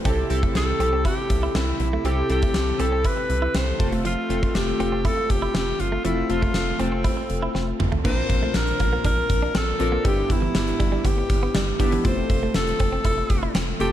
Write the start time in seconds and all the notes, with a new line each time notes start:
0.05 C2 C3 C4 E4 G4 A4, kick, closed hi-hat
0.30 C2 C4 E4 G4 A4, muted clean electric guitar stroke, closed hi-hat
0.43 A3, kick
0.55 C2 A4, muted clean electric guitar stroke, snare, closed hi-hat
0.79 C2 C4 E4 G4 A4, closed hi-hat
0.93 C4
1.05 E4 G4, kick, closed hi-hat
1.18 muted clean electric guitar stroke
1.30 C2, kick, closed hi-hat
1.43 E4
1.55 C2 C4 E4, snare, closed hi-hat
1.80 B1, muted clean electric guitar stroke, closed hi-hat
1.93 A3
2.04 C2 C3 C4 E4 G4 A4, closed hi-hat
2.29 C2 C4 E4 G4 A4, muted clean electric guitar stroke, closed hi-hat
2.42 A3, kick, closed hi-hat
2.54 C2, muted clean electric guitar stroke, snare, closed hi-hat
2.79 C2 C4 E4 G4 A4, closed hi-hat
2.92 C4
3.04 E4 B4, kick, closed hi-hat
3.17 muted clean electric guitar stroke
3.30 C2, closed hi-hat
3.42 E4
3.55 C2 C4 C5, snare, closed hi-hat
3.79 F1 A3 C4 F4 A4, muted clean electric guitar stroke, kick, closed hi-hat
3.92 A3, closed hi-hat
4.05 F3 F4, closed hi-hat
4.29 F1 A3 C4 F4 A4, muted clean electric guitar stroke, closed hi-hat
4.43 A3, kick
4.55 F1 G4, muted clean electric guitar stroke, snare, closed hi-hat
4.79 F1 A3 C4 F4 A4, closed hi-hat
4.92 C4
5.05 E4 A4, kick, closed hi-hat
5.17 muted clean electric guitar stroke
5.30 F1 G4, kick, closed hi-hat
5.42 E4
5.55 F1 C4, snare, closed hi-hat
5.80 G1 F4, muted clean electric guitar stroke, closed hi-hat
5.92 A3
6.04 F1 F3 A3 C4 E4 F4 A4, closed hi-hat
6.29 F1 A3 C4 F4 A4, muted clean electric guitar stroke, closed hi-hat
6.42 A3, kick
6.54 F1, muted clean electric guitar stroke, snare, closed hi-hat
6.79 F1 A3 C4 F4 A4, closed hi-hat
6.92 C4
7.04 E4, kick, closed hi-hat
7.17 muted clean electric guitar stroke
7.30 F1, closed hi-hat
7.42 E4
7.55 F1 C4, snare
7.80 G1, muted clean electric guitar stroke, mid tom
7.92 A3, floor tom
8.04 A#1 A#2 A#3 C4 D4 F4 A#4 C5, kick, crash
8.30 A#1, muted clean electric guitar stroke, kick, closed hi-hat
8.43 A3
8.54 A#1 A#4, muted clean electric guitar stroke, snare, closed hi-hat
8.67 closed hi-hat
8.80 A#1 A#3, kick, closed hi-hat
8.93 A#3
9.04 A#1 D4 A#4, kick, closed hi-hat
9.18 muted clean electric guitar stroke
9.29 A#1, kick, closed hi-hat
9.42 D4
9.55 A#1 C4 A4, snare, closed hi-hat
9.79 A#1 C4 D4 F4 A#4, muted clean electric guitar stroke, closed hi-hat
9.92 A#3
10.04 G1 G2 G3 B3 D4 E4 G4, kick, closed hi-hat
10.30 G1 E4, muted clean electric guitar stroke, kick, closed hi-hat
10.42 E3
10.55 G1, muted clean electric guitar stroke, snare, closed hi-hat
10.68 closed hi-hat
10.80 G1 G3, kick, closed hi-hat
10.92 G3
11.05 G1 B3 G4, kick, closed hi-hat
11.18 muted clean electric guitar stroke
11.30 G1, kick, closed hi-hat
11.43 B3
11.55 G1 G3, snare, closed hi-hat
11.79 G1 B3 D4 E4 G4, muted clean electric guitar stroke, kick, closed hi-hat
11.92 E3, closed hi-hat
12.04 F1 F3 A3 C4 F4 A4 C5, kick, closed hi-hat
12.30 F1, muted clean electric guitar stroke, kick, closed hi-hat
12.43 A3
12.54 F1 A4, muted clean electric guitar stroke, snare, closed hi-hat
12.67 closed hi-hat
12.80 F1 C4, kick, closed hi-hat
12.92 C4
13.04 F1 E4 A4, kick, closed hi-hat
13.18 muted clean electric guitar stroke
13.30 F1, kick, closed hi-hat
13.43 E4
13.55 F1 C4, snare, closed hi-hat
13.80 F1 A3 C4 F4 G4 A4, muted clean electric guitar stroke, closed hi-hat